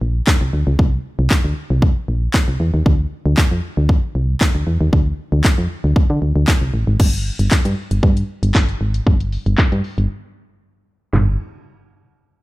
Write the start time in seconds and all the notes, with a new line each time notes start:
0.01 A#1
0.27 kick, snare, clap
0.41 C2
0.53 D2
0.67 C#2
0.79 C2, kick
1.19 C2
1.31 kick, snare, clap
1.44 D2
1.70 C2
1.82 kick
2.08 A#1
2.34 kick, snare, clap
2.48 C2
2.60 E2
2.74 D#2
2.86 D2, kick
3.26 D2
3.38 kick, snare, clap
3.51 F2
3.77 D2
3.89 kick
4.15 C2
4.41 kick, snare, clap
4.55 D2
4.67 E2
4.81 D#2
4.93 D2, kick
5.32 D2
5.44 kick, snare, clap
5.58 F2
5.84 D2
5.96 kick
6.10 D3
6.22 D2
6.36 D2
6.48 kick, snare, clap
6.61 C2
6.74 A1
6.87 G#1
7.00 G1, kick, crash
7.13 closed hi-hat
7.39 G1, closed hi-hat
7.51 kick, snare, clap
7.65 G2, closed hi-hat
7.91 G1, closed hi-hat
8.03 G2, kick
8.17 closed hi-hat
8.43 G1, closed hi-hat
8.55 kick, snare, clap
8.69 closed hi-hat
8.81 G#1
8.94 closed hi-hat
9.07 G1, kick
9.20 closed hi-hat
9.32 open hi-hat
9.46 G1, closed hi-hat
9.58 kick, snare, clap
9.72 G2, closed hi-hat
9.84 open hi-hat
9.98 G1, closed hi-hat
11.13 G1, snare, floor tom, crash